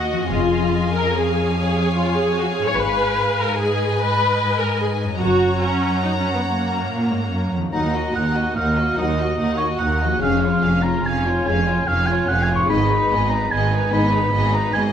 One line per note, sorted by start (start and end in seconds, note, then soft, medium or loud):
0.00 0.26 D#2 soft
0.00 0.23 D#3 soft
0.00 0.26 A#3 soft
0.00 0.28 F#4 soft
0.00 0.30 F#4 medium
0.00 0.30 A#4 soft
0.00 1.10 D#5 soft
0.00 0.27 F#5 soft
0.12 2.69 F3 soft
0.17 2.71 C#4 soft
0.22 2.74 F4 soft
0.26 2.71 G#4 soft
0.26 2.72 G#5 soft
0.30 0.69 F1 soft
0.30 2.76 F2 soft
0.30 0.91 F4 medium
0.30 3.54 F5 soft
0.94 1.13 A#4 medium
1.13 1.54 G#4 medium
1.13 2.77 C#5 soft
1.55 1.94 G#4 medium
1.95 2.15 F4 medium
2.16 2.36 G#4 medium
2.37 2.50 F#4 medium
2.51 2.63 G#4 medium
2.59 5.15 G#2 soft
2.63 5.17 B3 soft
2.63 2.77 C#5 medium
2.68 5.19 D#4 soft
2.72 3.14 G#1 soft
2.72 5.17 G#2 soft
2.72 5.21 G#4 soft
2.72 5.17 G#5 medium
2.77 3.38 B4 medium
2.77 5.18 B4 soft
3.39 3.59 A#4 medium
3.58 3.98 G#4 medium
3.58 5.22 D#5 medium
4.00 4.60 B4 medium
4.59 4.80 A#4 medium
4.81 4.89 G#4 medium
5.04 7.67 F#2 soft
5.08 7.69 C#4 soft
5.13 7.64 F#4 soft
5.17 5.60 F#1 soft
5.17 6.85 F#2 soft
5.17 5.60 F#4 medium
5.17 7.69 A#4 soft
5.17 7.49 C#5 soft
5.17 7.53 F#5 soft
5.17 7.53 A#5 soft
5.62 6.04 C#4 medium
6.04 6.10 D#4 medium
6.20 6.33 C#4 soft
6.34 6.39 B3 soft
6.47 7.51 A#3 soft
6.90 7.10 A#2 soft
7.11 7.32 G#2 soft
7.32 7.53 F#2 soft
7.53 7.73 F2 soft
7.53 10.16 D#3 soft
7.61 10.18 D#4 soft
7.65 10.20 F#4 soft
7.70 8.10 D#2 soft
7.70 7.87 F#3 soft
7.70 7.87 D#4 soft
7.70 7.93 D#4 soft
7.70 10.22 A#4 soft
7.70 7.93 A#4 soft
7.70 7.93 F#5 soft
7.70 8.12 A#5 medium
7.74 8.11 D#2 soft
7.94 8.15 F#4 soft
7.94 8.16 D#5 soft
8.13 8.52 D#2 soft
8.13 8.36 D#4 soft
8.13 8.35 A#4 soft
8.13 8.36 F#5 soft
8.13 8.55 F#5 soft
8.35 8.56 F#4 soft
8.35 8.57 F#4 soft
8.35 8.57 D#5 soft
8.56 8.93 D#2 soft
8.56 8.94 D#2 soft
8.56 8.76 D#4 soft
8.56 8.76 A#4 soft
8.56 8.97 F5 medium
8.56 8.77 F#5 soft
8.76 8.97 F#4 soft
8.76 8.98 F#4 soft
8.76 8.98 D#5 soft
8.97 9.34 D#2 soft
8.97 9.35 D#2 soft
8.97 9.12 F#3 soft
8.97 9.12 D#4 soft
8.97 9.19 D#4 soft
8.97 9.18 A#4 soft
8.97 9.57 D#5 medium
8.97 9.18 F#5 soft
9.18 9.39 F#4 soft
9.18 9.40 F#4 soft
9.18 9.40 D#5 soft
9.37 9.76 D#2 soft
9.37 9.59 D#4 soft
9.37 9.58 A#4 soft
9.37 9.58 F#5 soft
9.57 9.81 F#4 soft
9.57 9.67 C#5 soft
9.57 9.80 D#5 soft
9.78 10.17 D#2 soft
9.78 10.02 D#4 soft
9.78 10.01 A#4 soft
9.78 10.00 F#5 soft
9.78 10.20 F#5 soft
10.01 12.62 F3 soft
10.01 10.23 F#4 soft
10.01 10.22 D#5 soft
10.09 12.64 C#4 soft
10.13 12.59 G#4 soft
10.18 10.58 F1 soft
10.18 10.41 G#4 soft
10.18 12.68 C#5 soft
10.18 10.84 F5 medium
10.18 10.41 F5 soft
10.22 10.59 F2 soft
10.22 10.37 G#3 soft
10.22 10.37 C#4 soft
10.22 10.42 C#4 soft
10.41 10.63 F4 soft
10.41 10.65 F4 soft
10.41 10.64 C#5 soft
10.62 11.00 F1 soft
10.62 11.00 F2 soft
10.62 10.85 C#4 soft
10.62 10.84 G#4 soft
10.62 10.84 F5 soft
10.83 11.04 F4 soft
10.83 11.05 F4 soft
10.83 11.05 C#5 soft
10.83 11.08 A#5 medium
11.03 11.41 F1 soft
11.03 11.41 F2 soft
11.03 11.25 C#4 soft
11.03 11.23 G#4 soft
11.03 11.24 F5 soft
11.03 11.47 G#5 medium
11.24 11.45 F4 soft
11.24 11.47 F4 soft
11.24 11.46 C#5 soft
11.45 11.82 F1 medium
11.45 11.83 F2 medium
11.45 11.60 G#3 soft
11.45 11.60 C#4 soft
11.45 11.68 C#4 soft
11.45 11.67 G#4 soft
11.45 11.68 F5 soft
11.45 11.89 G#5 medium
11.67 11.87 F4 soft
11.67 11.88 F4 soft
11.67 11.88 C#5 soft
11.87 12.23 F1 medium
11.87 12.23 F2 medium
11.87 12.06 C#4 soft
11.87 12.07 G#4 soft
11.87 12.08 F5 medium
11.87 12.07 F5 soft
12.06 12.28 F4 soft
12.06 12.29 F4 soft
12.06 12.29 C#5 soft
12.06 12.27 G#5 medium
12.27 12.64 F1 medium
12.27 12.64 F2 soft
12.27 12.48 C#4 soft
12.27 12.49 G#4 soft
12.27 12.50 F5 soft
12.27 12.44 F#5 medium
12.43 12.55 G#5 medium
12.48 14.92 G#2 soft
12.48 12.69 F4 soft
12.48 12.70 F4 soft
12.48 12.70 C#5 soft
12.55 14.92 D#4 soft
12.55 12.69 C#6 medium
12.61 14.92 G#4 soft
12.65 13.05 G#2 medium
12.65 12.83 G#3 soft
12.65 12.83 D#4 medium
12.65 14.92 B4 soft
12.69 13.05 G#1 medium
12.69 12.88 B3 soft
12.69 12.89 G#4 soft
12.69 12.88 D#5 soft
12.69 13.31 B5 medium
12.90 13.10 D#4 soft
12.90 13.10 B4 soft
12.90 13.11 B4 soft
13.10 13.47 G#1 medium
13.10 13.46 G#2 medium
13.10 13.31 B3 soft
13.10 13.32 G#4 soft
13.10 13.31 D#5 soft
13.29 13.51 D#4 soft
13.29 13.52 B4 soft
13.29 13.53 A#5 medium
13.50 13.87 G#1 medium
13.50 13.87 G#2 medium
13.50 13.70 B3 soft
13.50 13.71 G#4 soft
13.50 13.71 D#5 soft
13.50 13.92 G#5 medium
13.70 13.91 D#4 soft
13.70 13.92 B4 soft
13.70 13.93 B4 soft
13.91 14.27 G#1 medium
13.91 14.27 G#2 medium
13.91 14.06 G#3 medium
13.91 14.12 B3 medium
13.91 14.06 D#4 medium
13.91 14.13 G#4 soft
13.91 14.13 D#5 soft
13.91 14.52 B5 medium
14.12 14.33 D#4 soft
14.12 14.33 B4 soft
14.12 14.34 B4 soft
14.32 14.68 G#1 medium
14.32 14.69 G#2 medium
14.32 14.52 B3 soft
14.32 14.52 G#4 medium
14.32 14.52 D#5 soft
14.53 14.74 D#4 medium
14.53 14.73 B4 soft
14.53 14.74 B4 soft
14.53 14.73 A#5 medium
14.74 14.92 G#1 medium
14.74 14.92 G#2 medium
14.74 14.92 B3 soft
14.74 14.92 G#4 soft
14.74 14.92 D#5 soft
14.74 14.83 G#5 medium